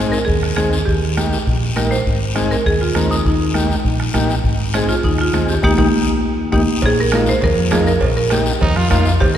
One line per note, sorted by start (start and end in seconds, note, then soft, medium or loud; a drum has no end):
0.00 0.16 G#1 medium
0.00 0.18 C4 medium
0.00 0.18 D#4 medium
0.00 0.19 G#4 medium
0.12 0.26 A#4 medium
0.12 short guiro medium
0.25 0.51 D#2 medium
0.25 0.54 G#4 medium
0.25 bombo low medium
0.25 high conga soft
0.25 long guiro medium
0.43 bombo rim medium
0.56 0.81 D#2 medium
0.56 0.78 C4 medium
0.56 0.78 D#4 medium
0.56 0.87 G#4 medium
0.56 0.78 G#4 medium
0.56 bombo rim medium
0.56 high conga medium
0.56 short guiro medium
0.73 short guiro medium
0.85 1.35 D#2 medium
0.85 1.42 G4 medium
0.85 bombo low medium
0.85 high conga soft
0.85 long guiro medium
1.17 1.38 A#3 medium
1.17 1.38 D#4 medium
1.17 1.38 G4 medium
1.17 bombo rim medium
1.17 high conga medium
1.17 short guiro medium
1.33 short guiro medium
1.47 1.71 A#1 medium
1.47 bombo low medium
1.47 high conga soft
1.47 long guiro medium
1.76 2.00 A#1 medium
1.76 1.97 A#3 medium
1.76 1.97 D#4 medium
1.76 1.97 G4 medium
1.76 1.90 A#4 medium
1.76 bombo rim medium
1.76 high conga medium
1.76 short guiro medium
1.91 2.33 C5 medium
1.91 short guiro medium
2.06 2.54 G#1 medium
2.06 bombo low medium
2.06 high conga soft
2.06 long guiro medium
2.35 2.56 C4 medium
2.35 2.57 D#4 medium
2.35 2.57 G#4 medium
2.35 bombo rim medium
2.35 high conga medium
2.35 short guiro medium
2.51 2.58 A#4 medium
2.51 short guiro medium
2.66 2.90 D#2 medium
2.66 2.81 G#4 medium
2.66 bombo low medium
2.66 long guiro medium
2.81 3.09 F4 medium
2.95 3.19 D#2 medium
2.95 3.16 C4 medium
2.95 3.16 D#4 medium
2.95 3.16 A#4 medium
2.95 bombo rim medium
2.95 high conga medium
2.95 short guiro medium
3.11 3.18 D#4 medium
3.11 short guiro medium
3.25 3.73 D#2 medium
3.25 4.11 D#4 medium
3.25 bombo low medium
3.25 long guiro medium
3.54 3.76 A#3 medium
3.54 3.76 D#4 medium
3.54 3.76 G4 medium
3.54 bombo rim medium
3.54 high conga medium
3.54 short guiro medium
3.71 short guiro medium
3.84 4.08 A#1 medium
3.84 bombo low medium
3.84 high conga soft
3.84 long guiro medium
4.00 bombo rim medium
4.14 4.39 A#1 medium
4.14 4.35 A#3 medium
4.14 4.36 D#4 medium
4.14 4.36 G4 medium
4.14 bombo low medium
4.14 bombo rim medium
4.14 high conga medium
4.14 short guiro medium
4.30 short guiro medium
4.44 4.92 G#1 medium
4.44 bombo low medium
4.44 high conga soft
4.44 long guiro medium
4.74 4.95 C4 medium
4.74 4.95 D#4 medium
4.74 4.81 G#4 medium
4.74 4.96 G#4 medium
4.74 bombo rim medium
4.74 high conga medium
4.74 short guiro medium
4.89 5.03 F4 medium
4.89 short guiro medium
5.03 5.28 D#2 medium
5.03 5.18 D#4 medium
5.03 bombo low medium
5.03 high conga soft
5.03 long guiro medium
5.18 5.51 F4 medium
5.18 bombo rim medium
5.33 5.57 D#2 medium
5.33 5.55 C4 medium
5.33 5.55 D#4 medium
5.33 5.55 G#4 medium
5.33 bombo rim medium
5.33 high conga medium
5.33 short guiro medium
5.48 5.63 G4 medium
5.48 short guiro medium
5.62 5.75 D#2 medium
5.62 5.73 A#3 medium
5.62 5.73 A#3 loud
5.62 5.72 D#4 medium
5.62 5.74 D#4 loud
5.62 5.73 G4 medium
5.62 5.74 G4 loud
5.62 bombo low medium
5.62 high conga medium
5.62 long guiro loud
5.78 5.90 D#2 medium
5.78 5.88 A#3 medium
5.78 5.88 D#4 medium
5.78 5.88 G4 medium
5.78 bombo low medium
5.78 high conga medium
5.78 long guiro medium
6.52 6.64 D#2 medium
6.52 6.62 A#3 medium
6.52 6.62 D#4 medium
6.52 6.63 D#4 medium
6.52 6.62 G4 medium
6.52 bombo low medium
6.52 high conga medium
6.52 long guiro medium
6.82 7.31 A#1 medium
6.82 7.00 G#4 loud
6.82 bombo low medium
6.82 cowbell loud
6.82 high conga soft
6.82 low conga medium
6.82 long guiro medium
7.00 7.13 A#4 medium
7.12 7.34 A#3 medium
7.12 7.34 D#4 medium
7.12 7.34 F4 medium
7.12 7.28 A#4 medium
7.12 bombo rim medium
7.12 cowbell medium
7.12 high conga medium
7.12 short guiro medium
7.26 7.44 C5 loud
7.26 short guiro medium
7.41 7.54 D#2 medium
7.41 7.74 A#4 loud
7.41 bombo low medium
7.41 cowbell medium
7.41 high conga soft
7.41 low conga medium
7.41 long guiro medium
7.58 7.70 F2 medium
7.71 7.96 F2 medium
7.71 7.93 A#3 medium
7.71 7.93 D#4 medium
7.71 7.93 F4 medium
7.71 7.86 G#4 medium
7.71 bombo rim medium
7.71 cowbell medium
7.71 high conga medium
7.71 low conga medium
7.71 low timbale medium
7.71 short guiro medium
7.87 8.15 A#4 medium
7.87 short guiro medium
8.01 8.49 A#1 medium
8.01 bombo low medium
8.01 cowbell medium
8.01 high conga soft
8.01 long guiro medium
8.17 8.24 A#4 medium
8.30 8.52 A#3 medium
8.30 8.53 D#4 medium
8.30 8.59 G4 medium
8.30 8.53 G4 medium
8.30 bombo rim medium
8.30 cowbell medium
8.30 high conga medium
8.30 short guiro medium
8.46 short guiro medium
8.61 8.73 D#2 medium
8.61 8.78 D#4 loud
8.61 bombo low medium
8.61 cowbell medium
8.61 high conga soft
8.61 low conga medium
8.61 long guiro medium
8.76 8.89 F2 medium
8.76 8.90 F4 medium
8.76 bombo rim medium
8.90 9.15 F2 medium
8.90 9.11 A#3 medium
8.90 9.12 D#4 medium
8.90 9.12 F4 medium
8.90 bombo low medium
8.90 bombo rim medium
8.90 cowbell medium
8.90 high conga medium
8.90 low conga medium
8.90 short guiro medium
9.05 short guiro medium
9.20 9.38 D#2 loud
9.20 9.35 G4 loud
9.20 bombo low medium
9.20 cowbell medium
9.20 high conga soft
9.20 long guiro medium